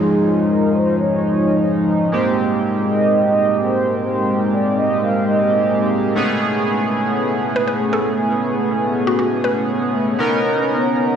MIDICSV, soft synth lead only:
0, 0, Header, 1, 2, 480
1, 0, Start_track
1, 0, Tempo, 504202
1, 106, Time_signature, 4, 2, 24, 8
1, 10625, End_track
2, 0, Start_track
2, 0, Title_t, "Soft synth lead"
2, 0, Program_c, 0, 80
2, 0, Note_on_c, 0, 68, 91
2, 378, Note_off_c, 0, 68, 0
2, 474, Note_on_c, 0, 70, 90
2, 666, Note_off_c, 0, 70, 0
2, 712, Note_on_c, 0, 72, 84
2, 906, Note_off_c, 0, 72, 0
2, 953, Note_on_c, 0, 73, 85
2, 1146, Note_off_c, 0, 73, 0
2, 1193, Note_on_c, 0, 73, 86
2, 1483, Note_off_c, 0, 73, 0
2, 2023, Note_on_c, 0, 72, 99
2, 2322, Note_off_c, 0, 72, 0
2, 2743, Note_on_c, 0, 75, 91
2, 3042, Note_off_c, 0, 75, 0
2, 3115, Note_on_c, 0, 75, 87
2, 3404, Note_off_c, 0, 75, 0
2, 3464, Note_on_c, 0, 72, 93
2, 3762, Note_off_c, 0, 72, 0
2, 3834, Note_on_c, 0, 72, 92
2, 4219, Note_off_c, 0, 72, 0
2, 4315, Note_on_c, 0, 74, 84
2, 4507, Note_off_c, 0, 74, 0
2, 4551, Note_on_c, 0, 75, 89
2, 4745, Note_off_c, 0, 75, 0
2, 4793, Note_on_c, 0, 77, 83
2, 4986, Note_off_c, 0, 77, 0
2, 5034, Note_on_c, 0, 75, 90
2, 5324, Note_off_c, 0, 75, 0
2, 10625, End_track
0, 0, End_of_file